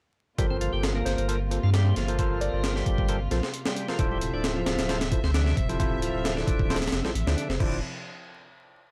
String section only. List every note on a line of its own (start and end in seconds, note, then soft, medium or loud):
0.38 3.96 C3 medium
0.38 3.96 A#3 medium
0.38 3.96 F4 medium
3.99 7.56 C3 medium
3.99 7.56 F3 medium
3.99 7.56 E5 medium
7.60 7.81 C3 medium
7.60 7.81 F3 medium
7.60 7.81 E4 medium